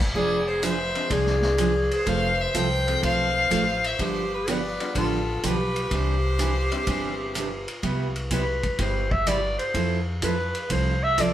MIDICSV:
0, 0, Header, 1, 7, 480
1, 0, Start_track
1, 0, Key_signature, 0, "major"
1, 0, Tempo, 479616
1, 146, Time_signature, 4, 2, 24, 8
1, 11344, End_track
2, 0, Start_track
2, 0, Title_t, "Fiddle"
2, 0, Program_c, 0, 110
2, 153, Note_on_c, 0, 74, 101
2, 477, Note_on_c, 0, 72, 83
2, 492, Note_off_c, 0, 74, 0
2, 634, Note_on_c, 0, 76, 97
2, 649, Note_off_c, 0, 72, 0
2, 1115, Note_on_c, 0, 74, 90
2, 1130, Note_off_c, 0, 76, 0
2, 1921, Note_off_c, 0, 74, 0
2, 1938, Note_on_c, 0, 72, 96
2, 2074, Note_on_c, 0, 77, 108
2, 2089, Note_off_c, 0, 72, 0
2, 2414, Note_on_c, 0, 76, 97
2, 2429, Note_off_c, 0, 77, 0
2, 2570, Note_on_c, 0, 79, 107
2, 2585, Note_off_c, 0, 76, 0
2, 3043, Note_off_c, 0, 79, 0
2, 3049, Note_on_c, 0, 77, 113
2, 3864, Note_on_c, 0, 76, 94
2, 3879, Note_off_c, 0, 77, 0
2, 4015, Note_on_c, 0, 72, 91
2, 4030, Note_off_c, 0, 76, 0
2, 4344, Note_on_c, 0, 71, 87
2, 4359, Note_off_c, 0, 72, 0
2, 4512, Note_on_c, 0, 74, 101
2, 4527, Note_off_c, 0, 71, 0
2, 4976, Note_off_c, 0, 74, 0
2, 4987, Note_on_c, 0, 69, 89
2, 5468, Note_on_c, 0, 71, 95
2, 5483, Note_off_c, 0, 69, 0
2, 5945, Note_on_c, 0, 72, 95
2, 5960, Note_off_c, 0, 71, 0
2, 7699, Note_off_c, 0, 72, 0
2, 11344, End_track
3, 0, Start_track
3, 0, Title_t, "Clarinet"
3, 0, Program_c, 1, 71
3, 153, Note_on_c, 1, 68, 83
3, 479, Note_off_c, 1, 68, 0
3, 479, Note_on_c, 1, 68, 76
3, 635, Note_on_c, 1, 72, 75
3, 650, Note_off_c, 1, 68, 0
3, 1119, Note_on_c, 1, 68, 79
3, 1134, Note_off_c, 1, 72, 0
3, 1923, Note_off_c, 1, 68, 0
3, 1933, Note_on_c, 1, 68, 80
3, 2091, Note_on_c, 1, 72, 97
3, 2106, Note_off_c, 1, 68, 0
3, 2414, Note_off_c, 1, 72, 0
3, 2414, Note_on_c, 1, 72, 83
3, 2562, Note_off_c, 1, 72, 0
3, 2562, Note_on_c, 1, 72, 87
3, 3039, Note_off_c, 1, 72, 0
3, 3052, Note_on_c, 1, 72, 83
3, 3855, Note_off_c, 1, 72, 0
3, 3855, Note_on_c, 1, 72, 75
3, 4019, Note_on_c, 1, 67, 91
3, 4034, Note_off_c, 1, 72, 0
3, 4350, Note_off_c, 1, 67, 0
3, 4350, Note_on_c, 1, 67, 80
3, 4508, Note_on_c, 1, 71, 79
3, 4523, Note_off_c, 1, 67, 0
3, 4974, Note_off_c, 1, 71, 0
3, 4979, Note_on_c, 1, 65, 70
3, 5453, Note_on_c, 1, 67, 82
3, 5468, Note_off_c, 1, 65, 0
3, 5931, Note_off_c, 1, 67, 0
3, 5931, Note_on_c, 1, 67, 80
3, 7692, Note_off_c, 1, 67, 0
3, 8336, Note_on_c, 1, 71, 78
3, 8816, Note_on_c, 1, 72, 74
3, 8831, Note_off_c, 1, 71, 0
3, 9122, Note_on_c, 1, 76, 100
3, 9137, Note_off_c, 1, 72, 0
3, 9284, Note_on_c, 1, 74, 89
3, 9299, Note_off_c, 1, 76, 0
3, 9583, Note_off_c, 1, 74, 0
3, 9589, Note_on_c, 1, 72, 84
3, 10041, Note_off_c, 1, 72, 0
3, 10245, Note_on_c, 1, 71, 86
3, 10727, Note_on_c, 1, 72, 85
3, 10742, Note_off_c, 1, 71, 0
3, 11042, Note_on_c, 1, 76, 108
3, 11057, Note_off_c, 1, 72, 0
3, 11216, Note_on_c, 1, 74, 86
3, 11231, Note_off_c, 1, 76, 0
3, 11344, Note_off_c, 1, 74, 0
3, 11344, End_track
4, 0, Start_track
4, 0, Title_t, "Honky-tonk piano"
4, 0, Program_c, 2, 3
4, 950, Note_on_c, 2, 53, 68
4, 955, Note_on_c, 2, 56, 63
4, 957, Note_on_c, 2, 60, 58
4, 961, Note_on_c, 2, 62, 78
4, 1557, Note_off_c, 2, 53, 0
4, 1560, Note_off_c, 2, 56, 0
4, 1561, Note_off_c, 2, 60, 0
4, 1563, Note_off_c, 2, 62, 0
4, 2873, Note_on_c, 2, 53, 65
4, 2878, Note_on_c, 2, 57, 65
4, 2880, Note_on_c, 2, 60, 70
4, 2888, Note_on_c, 2, 65, 76
4, 3482, Note_off_c, 2, 53, 0
4, 3484, Note_off_c, 2, 57, 0
4, 3485, Note_off_c, 2, 60, 0
4, 3489, Note_off_c, 2, 65, 0
4, 4801, Note_on_c, 2, 55, 67
4, 4806, Note_on_c, 2, 59, 61
4, 4809, Note_on_c, 2, 62, 64
4, 4813, Note_on_c, 2, 65, 74
4, 5407, Note_off_c, 2, 55, 0
4, 5410, Note_off_c, 2, 59, 0
4, 5411, Note_off_c, 2, 62, 0
4, 5413, Note_off_c, 2, 65, 0
4, 6720, Note_on_c, 2, 55, 72
4, 6724, Note_on_c, 2, 60, 66
4, 6729, Note_on_c, 2, 62, 70
4, 6733, Note_on_c, 2, 64, 81
4, 7327, Note_off_c, 2, 55, 0
4, 7329, Note_off_c, 2, 60, 0
4, 7331, Note_off_c, 2, 62, 0
4, 7333, Note_off_c, 2, 64, 0
4, 11344, End_track
5, 0, Start_track
5, 0, Title_t, "Steel-string acoustic guitar"
5, 0, Program_c, 3, 25
5, 149, Note_on_c, 3, 53, 53
5, 154, Note_on_c, 3, 60, 64
5, 157, Note_on_c, 3, 68, 69
5, 158, Note_on_c, 3, 62, 65
5, 379, Note_off_c, 3, 53, 0
5, 382, Note_off_c, 3, 60, 0
5, 383, Note_off_c, 3, 68, 0
5, 384, Note_off_c, 3, 62, 0
5, 623, Note_on_c, 3, 53, 71
5, 628, Note_on_c, 3, 60, 69
5, 632, Note_on_c, 3, 62, 81
5, 633, Note_on_c, 3, 68, 85
5, 748, Note_off_c, 3, 53, 0
5, 750, Note_off_c, 3, 60, 0
5, 753, Note_off_c, 3, 62, 0
5, 753, Note_off_c, 3, 68, 0
5, 1098, Note_on_c, 3, 53, 53
5, 1100, Note_on_c, 3, 60, 57
5, 1105, Note_on_c, 3, 62, 54
5, 1109, Note_on_c, 3, 68, 58
5, 1335, Note_off_c, 3, 53, 0
5, 1337, Note_off_c, 3, 60, 0
5, 1339, Note_off_c, 3, 62, 0
5, 1341, Note_off_c, 3, 68, 0
5, 1580, Note_on_c, 3, 53, 80
5, 1589, Note_on_c, 3, 60, 73
5, 1590, Note_on_c, 3, 62, 77
5, 1593, Note_on_c, 3, 68, 80
5, 1708, Note_off_c, 3, 53, 0
5, 1713, Note_off_c, 3, 60, 0
5, 1713, Note_off_c, 3, 62, 0
5, 1715, Note_off_c, 3, 68, 0
5, 2062, Note_on_c, 3, 53, 54
5, 2062, Note_on_c, 3, 57, 61
5, 2064, Note_on_c, 3, 60, 61
5, 2069, Note_on_c, 3, 65, 68
5, 2070, Note_on_c, 3, 69, 68
5, 2299, Note_off_c, 3, 53, 0
5, 2299, Note_off_c, 3, 57, 0
5, 2300, Note_off_c, 3, 60, 0
5, 2302, Note_off_c, 3, 65, 0
5, 2303, Note_off_c, 3, 69, 0
5, 2543, Note_on_c, 3, 53, 76
5, 2548, Note_on_c, 3, 57, 77
5, 2550, Note_on_c, 3, 60, 84
5, 2554, Note_on_c, 3, 65, 85
5, 2554, Note_on_c, 3, 69, 86
5, 2671, Note_off_c, 3, 53, 0
5, 2674, Note_off_c, 3, 57, 0
5, 2675, Note_off_c, 3, 60, 0
5, 2676, Note_off_c, 3, 65, 0
5, 2677, Note_off_c, 3, 69, 0
5, 3030, Note_on_c, 3, 53, 48
5, 3031, Note_on_c, 3, 57, 56
5, 3037, Note_on_c, 3, 60, 59
5, 3037, Note_on_c, 3, 65, 64
5, 3041, Note_on_c, 3, 69, 54
5, 3265, Note_off_c, 3, 53, 0
5, 3265, Note_off_c, 3, 57, 0
5, 3268, Note_off_c, 3, 60, 0
5, 3268, Note_off_c, 3, 65, 0
5, 3270, Note_off_c, 3, 69, 0
5, 3507, Note_on_c, 3, 53, 85
5, 3508, Note_on_c, 3, 57, 80
5, 3513, Note_on_c, 3, 60, 79
5, 3515, Note_on_c, 3, 65, 75
5, 3515, Note_on_c, 3, 69, 76
5, 3635, Note_off_c, 3, 53, 0
5, 3635, Note_off_c, 3, 57, 0
5, 3637, Note_off_c, 3, 60, 0
5, 3638, Note_off_c, 3, 65, 0
5, 3638, Note_off_c, 3, 69, 0
5, 3990, Note_on_c, 3, 50, 61
5, 3990, Note_on_c, 3, 53, 55
5, 3995, Note_on_c, 3, 59, 63
5, 3997, Note_on_c, 3, 62, 64
5, 4000, Note_on_c, 3, 67, 63
5, 4226, Note_off_c, 3, 50, 0
5, 4226, Note_off_c, 3, 53, 0
5, 4228, Note_off_c, 3, 59, 0
5, 4229, Note_off_c, 3, 62, 0
5, 4230, Note_off_c, 3, 67, 0
5, 4475, Note_on_c, 3, 50, 78
5, 4480, Note_on_c, 3, 53, 80
5, 4482, Note_on_c, 3, 59, 84
5, 4484, Note_on_c, 3, 62, 80
5, 4485, Note_on_c, 3, 67, 87
5, 4600, Note_off_c, 3, 50, 0
5, 4602, Note_off_c, 3, 53, 0
5, 4603, Note_off_c, 3, 59, 0
5, 4604, Note_off_c, 3, 62, 0
5, 4604, Note_off_c, 3, 67, 0
5, 4951, Note_on_c, 3, 50, 55
5, 4954, Note_on_c, 3, 53, 58
5, 4956, Note_on_c, 3, 59, 59
5, 4958, Note_on_c, 3, 62, 50
5, 4964, Note_on_c, 3, 67, 55
5, 5187, Note_off_c, 3, 50, 0
5, 5188, Note_off_c, 3, 53, 0
5, 5189, Note_off_c, 3, 59, 0
5, 5190, Note_off_c, 3, 62, 0
5, 5194, Note_off_c, 3, 67, 0
5, 5438, Note_on_c, 3, 50, 70
5, 5442, Note_on_c, 3, 53, 79
5, 5442, Note_on_c, 3, 59, 85
5, 5446, Note_on_c, 3, 62, 80
5, 5448, Note_on_c, 3, 67, 78
5, 5562, Note_off_c, 3, 50, 0
5, 5564, Note_off_c, 3, 53, 0
5, 5564, Note_off_c, 3, 59, 0
5, 5566, Note_off_c, 3, 62, 0
5, 5567, Note_off_c, 3, 67, 0
5, 5914, Note_on_c, 3, 48, 61
5, 5917, Note_on_c, 3, 52, 66
5, 5920, Note_on_c, 3, 62, 65
5, 5924, Note_on_c, 3, 67, 63
5, 6149, Note_off_c, 3, 48, 0
5, 6151, Note_off_c, 3, 52, 0
5, 6152, Note_off_c, 3, 62, 0
5, 6154, Note_off_c, 3, 67, 0
5, 6389, Note_on_c, 3, 48, 73
5, 6393, Note_on_c, 3, 52, 81
5, 6398, Note_on_c, 3, 62, 78
5, 6399, Note_on_c, 3, 67, 76
5, 6518, Note_off_c, 3, 48, 0
5, 6520, Note_off_c, 3, 52, 0
5, 6522, Note_off_c, 3, 62, 0
5, 6523, Note_off_c, 3, 67, 0
5, 6868, Note_on_c, 3, 48, 46
5, 6876, Note_on_c, 3, 52, 55
5, 6877, Note_on_c, 3, 62, 60
5, 6881, Note_on_c, 3, 67, 61
5, 7106, Note_off_c, 3, 48, 0
5, 7110, Note_off_c, 3, 52, 0
5, 7111, Note_off_c, 3, 62, 0
5, 7112, Note_off_c, 3, 67, 0
5, 7350, Note_on_c, 3, 48, 69
5, 7358, Note_on_c, 3, 52, 77
5, 7360, Note_on_c, 3, 62, 78
5, 7360, Note_on_c, 3, 67, 77
5, 7478, Note_off_c, 3, 48, 0
5, 7482, Note_off_c, 3, 52, 0
5, 7483, Note_off_c, 3, 62, 0
5, 7483, Note_off_c, 3, 67, 0
5, 7832, Note_on_c, 3, 48, 55
5, 7836, Note_on_c, 3, 55, 62
5, 7841, Note_on_c, 3, 59, 60
5, 7841, Note_on_c, 3, 67, 62
5, 7842, Note_on_c, 3, 64, 61
5, 8067, Note_off_c, 3, 48, 0
5, 8069, Note_off_c, 3, 55, 0
5, 8072, Note_off_c, 3, 59, 0
5, 8072, Note_off_c, 3, 64, 0
5, 8072, Note_off_c, 3, 67, 0
5, 8315, Note_on_c, 3, 48, 74
5, 8317, Note_on_c, 3, 55, 80
5, 8322, Note_on_c, 3, 59, 78
5, 8322, Note_on_c, 3, 64, 81
5, 8327, Note_on_c, 3, 67, 79
5, 8440, Note_off_c, 3, 48, 0
5, 8441, Note_off_c, 3, 55, 0
5, 8443, Note_off_c, 3, 59, 0
5, 8443, Note_off_c, 3, 64, 0
5, 8446, Note_off_c, 3, 67, 0
5, 8791, Note_on_c, 3, 48, 52
5, 8794, Note_on_c, 3, 59, 54
5, 8795, Note_on_c, 3, 55, 50
5, 8798, Note_on_c, 3, 64, 59
5, 8802, Note_on_c, 3, 67, 58
5, 9026, Note_off_c, 3, 48, 0
5, 9027, Note_off_c, 3, 59, 0
5, 9028, Note_off_c, 3, 55, 0
5, 9029, Note_off_c, 3, 64, 0
5, 9031, Note_off_c, 3, 67, 0
5, 9271, Note_on_c, 3, 48, 75
5, 9277, Note_on_c, 3, 55, 81
5, 9278, Note_on_c, 3, 59, 82
5, 9284, Note_on_c, 3, 64, 81
5, 9284, Note_on_c, 3, 67, 84
5, 9397, Note_off_c, 3, 48, 0
5, 9399, Note_off_c, 3, 55, 0
5, 9400, Note_off_c, 3, 59, 0
5, 9403, Note_off_c, 3, 64, 0
5, 9403, Note_off_c, 3, 67, 0
5, 9745, Note_on_c, 3, 53, 60
5, 9750, Note_on_c, 3, 60, 56
5, 9755, Note_on_c, 3, 64, 68
5, 9759, Note_on_c, 3, 69, 72
5, 9981, Note_off_c, 3, 53, 0
5, 9984, Note_off_c, 3, 60, 0
5, 9986, Note_off_c, 3, 64, 0
5, 9988, Note_off_c, 3, 69, 0
5, 10230, Note_on_c, 3, 53, 76
5, 10235, Note_on_c, 3, 60, 80
5, 10236, Note_on_c, 3, 64, 79
5, 10239, Note_on_c, 3, 69, 82
5, 10354, Note_off_c, 3, 53, 0
5, 10357, Note_off_c, 3, 60, 0
5, 10357, Note_off_c, 3, 64, 0
5, 10359, Note_off_c, 3, 69, 0
5, 10708, Note_on_c, 3, 53, 48
5, 10709, Note_on_c, 3, 60, 62
5, 10715, Note_on_c, 3, 64, 59
5, 10715, Note_on_c, 3, 69, 52
5, 10940, Note_off_c, 3, 53, 0
5, 10941, Note_off_c, 3, 60, 0
5, 10944, Note_off_c, 3, 64, 0
5, 10944, Note_off_c, 3, 69, 0
5, 11186, Note_on_c, 3, 53, 79
5, 11190, Note_on_c, 3, 60, 77
5, 11192, Note_on_c, 3, 64, 80
5, 11196, Note_on_c, 3, 69, 81
5, 11310, Note_off_c, 3, 53, 0
5, 11312, Note_off_c, 3, 60, 0
5, 11313, Note_off_c, 3, 64, 0
5, 11315, Note_off_c, 3, 69, 0
5, 11344, End_track
6, 0, Start_track
6, 0, Title_t, "Upright bass"
6, 0, Program_c, 4, 32
6, 146, Note_on_c, 4, 29, 77
6, 917, Note_off_c, 4, 29, 0
6, 1104, Note_on_c, 4, 36, 85
6, 1877, Note_off_c, 4, 36, 0
6, 2065, Note_on_c, 4, 29, 78
6, 2453, Note_off_c, 4, 29, 0
6, 2548, Note_on_c, 4, 36, 82
6, 2960, Note_off_c, 4, 36, 0
6, 3032, Note_on_c, 4, 35, 77
6, 3442, Note_off_c, 4, 35, 0
6, 3516, Note_on_c, 4, 33, 91
6, 3925, Note_off_c, 4, 33, 0
6, 3994, Note_on_c, 4, 31, 78
6, 4765, Note_off_c, 4, 31, 0
6, 4958, Note_on_c, 4, 33, 85
6, 5367, Note_off_c, 4, 33, 0
6, 5439, Note_on_c, 4, 35, 87
6, 5848, Note_off_c, 4, 35, 0
6, 5915, Note_on_c, 4, 36, 83
6, 6686, Note_off_c, 4, 36, 0
6, 6877, Note_on_c, 4, 31, 81
6, 7646, Note_off_c, 4, 31, 0
6, 7837, Note_on_c, 4, 36, 80
6, 8605, Note_off_c, 4, 36, 0
6, 8794, Note_on_c, 4, 31, 83
6, 9562, Note_off_c, 4, 31, 0
6, 9752, Note_on_c, 4, 41, 83
6, 10518, Note_off_c, 4, 41, 0
6, 10710, Note_on_c, 4, 36, 85
6, 11344, Note_off_c, 4, 36, 0
6, 11344, End_track
7, 0, Start_track
7, 0, Title_t, "Drums"
7, 145, Note_on_c, 9, 36, 29
7, 245, Note_off_c, 9, 36, 0
7, 627, Note_on_c, 9, 44, 56
7, 627, Note_on_c, 9, 51, 70
7, 727, Note_off_c, 9, 44, 0
7, 727, Note_off_c, 9, 51, 0
7, 952, Note_on_c, 9, 51, 44
7, 1052, Note_off_c, 9, 51, 0
7, 1105, Note_on_c, 9, 36, 35
7, 1105, Note_on_c, 9, 51, 66
7, 1205, Note_off_c, 9, 36, 0
7, 1205, Note_off_c, 9, 51, 0
7, 1265, Note_on_c, 9, 38, 29
7, 1365, Note_off_c, 9, 38, 0
7, 1422, Note_on_c, 9, 38, 46
7, 1522, Note_off_c, 9, 38, 0
7, 1584, Note_on_c, 9, 44, 64
7, 1584, Note_on_c, 9, 51, 70
7, 1684, Note_off_c, 9, 44, 0
7, 1684, Note_off_c, 9, 51, 0
7, 1915, Note_on_c, 9, 51, 48
7, 2015, Note_off_c, 9, 51, 0
7, 2067, Note_on_c, 9, 36, 32
7, 2067, Note_on_c, 9, 51, 59
7, 2167, Note_off_c, 9, 36, 0
7, 2167, Note_off_c, 9, 51, 0
7, 2546, Note_on_c, 9, 44, 64
7, 2546, Note_on_c, 9, 51, 73
7, 2646, Note_off_c, 9, 44, 0
7, 2646, Note_off_c, 9, 51, 0
7, 2880, Note_on_c, 9, 51, 45
7, 2980, Note_off_c, 9, 51, 0
7, 3032, Note_on_c, 9, 36, 35
7, 3034, Note_on_c, 9, 51, 65
7, 3132, Note_off_c, 9, 36, 0
7, 3134, Note_off_c, 9, 51, 0
7, 3514, Note_on_c, 9, 44, 62
7, 3514, Note_on_c, 9, 51, 75
7, 3614, Note_off_c, 9, 44, 0
7, 3614, Note_off_c, 9, 51, 0
7, 3845, Note_on_c, 9, 51, 50
7, 3945, Note_off_c, 9, 51, 0
7, 3995, Note_on_c, 9, 36, 35
7, 3995, Note_on_c, 9, 51, 58
7, 4095, Note_off_c, 9, 36, 0
7, 4095, Note_off_c, 9, 51, 0
7, 4479, Note_on_c, 9, 44, 56
7, 4479, Note_on_c, 9, 51, 66
7, 4579, Note_off_c, 9, 44, 0
7, 4579, Note_off_c, 9, 51, 0
7, 4805, Note_on_c, 9, 51, 46
7, 4905, Note_off_c, 9, 51, 0
7, 4956, Note_on_c, 9, 36, 38
7, 4957, Note_on_c, 9, 51, 66
7, 5056, Note_off_c, 9, 36, 0
7, 5057, Note_off_c, 9, 51, 0
7, 5438, Note_on_c, 9, 44, 63
7, 5438, Note_on_c, 9, 51, 72
7, 5539, Note_off_c, 9, 44, 0
7, 5539, Note_off_c, 9, 51, 0
7, 5763, Note_on_c, 9, 51, 49
7, 5863, Note_off_c, 9, 51, 0
7, 5915, Note_on_c, 9, 36, 31
7, 5915, Note_on_c, 9, 51, 58
7, 6015, Note_off_c, 9, 36, 0
7, 6015, Note_off_c, 9, 51, 0
7, 6395, Note_on_c, 9, 44, 58
7, 6395, Note_on_c, 9, 51, 68
7, 6495, Note_off_c, 9, 44, 0
7, 6495, Note_off_c, 9, 51, 0
7, 6721, Note_on_c, 9, 51, 45
7, 6821, Note_off_c, 9, 51, 0
7, 6873, Note_on_c, 9, 51, 68
7, 6877, Note_on_c, 9, 36, 38
7, 6973, Note_off_c, 9, 51, 0
7, 6977, Note_off_c, 9, 36, 0
7, 7356, Note_on_c, 9, 44, 60
7, 7356, Note_on_c, 9, 51, 68
7, 7457, Note_off_c, 9, 44, 0
7, 7457, Note_off_c, 9, 51, 0
7, 7684, Note_on_c, 9, 51, 48
7, 7784, Note_off_c, 9, 51, 0
7, 7837, Note_on_c, 9, 36, 26
7, 7837, Note_on_c, 9, 51, 54
7, 7937, Note_off_c, 9, 36, 0
7, 7937, Note_off_c, 9, 51, 0
7, 8162, Note_on_c, 9, 51, 44
7, 8262, Note_off_c, 9, 51, 0
7, 8312, Note_on_c, 9, 44, 57
7, 8312, Note_on_c, 9, 51, 66
7, 8315, Note_on_c, 9, 36, 29
7, 8412, Note_off_c, 9, 44, 0
7, 8412, Note_off_c, 9, 51, 0
7, 8415, Note_off_c, 9, 36, 0
7, 8638, Note_on_c, 9, 51, 47
7, 8642, Note_on_c, 9, 36, 45
7, 8738, Note_off_c, 9, 51, 0
7, 8742, Note_off_c, 9, 36, 0
7, 8792, Note_on_c, 9, 51, 68
7, 8795, Note_on_c, 9, 36, 29
7, 8892, Note_off_c, 9, 51, 0
7, 8895, Note_off_c, 9, 36, 0
7, 9121, Note_on_c, 9, 36, 57
7, 9221, Note_off_c, 9, 36, 0
7, 9274, Note_on_c, 9, 36, 23
7, 9274, Note_on_c, 9, 44, 64
7, 9274, Note_on_c, 9, 51, 69
7, 9374, Note_off_c, 9, 36, 0
7, 9374, Note_off_c, 9, 44, 0
7, 9374, Note_off_c, 9, 51, 0
7, 9599, Note_on_c, 9, 51, 45
7, 9699, Note_off_c, 9, 51, 0
7, 9752, Note_on_c, 9, 36, 19
7, 9752, Note_on_c, 9, 51, 58
7, 9852, Note_off_c, 9, 36, 0
7, 9852, Note_off_c, 9, 51, 0
7, 10228, Note_on_c, 9, 44, 57
7, 10228, Note_on_c, 9, 51, 69
7, 10230, Note_on_c, 9, 36, 26
7, 10328, Note_off_c, 9, 44, 0
7, 10328, Note_off_c, 9, 51, 0
7, 10330, Note_off_c, 9, 36, 0
7, 10554, Note_on_c, 9, 51, 51
7, 10654, Note_off_c, 9, 51, 0
7, 10706, Note_on_c, 9, 51, 68
7, 10708, Note_on_c, 9, 36, 29
7, 10806, Note_off_c, 9, 51, 0
7, 10808, Note_off_c, 9, 36, 0
7, 11187, Note_on_c, 9, 36, 23
7, 11187, Note_on_c, 9, 44, 68
7, 11187, Note_on_c, 9, 51, 76
7, 11287, Note_off_c, 9, 36, 0
7, 11287, Note_off_c, 9, 44, 0
7, 11287, Note_off_c, 9, 51, 0
7, 11344, End_track
0, 0, End_of_file